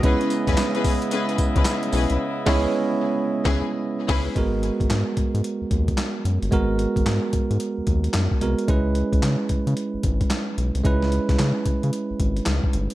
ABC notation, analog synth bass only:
X:1
M:4/4
L:1/16
Q:"Swing 16ths" 1/4=111
K:C#dor
V:1 name="Analog synth bass" clef=bass
C,, z2 E,, z6 C,, C,, z2 B,,, ^B,,, | z2 C,,2 z4 z C,,2 z3 C,,2 | G,,,3 G,,, G,, z G,, G,, z D,, D,,2 z2 F,, =G,,, | G,,,3 G,,, G,, z G,, G,, z D,, D,,2 F,, z ^B,,, z |
C,,3 C,, C, z C, C, z G,,, G,,,2 z2 B,,, ^B,,, | C,,3 C,, C, z C, C, z G,,, G,,,2 C,, z =G,,, z |]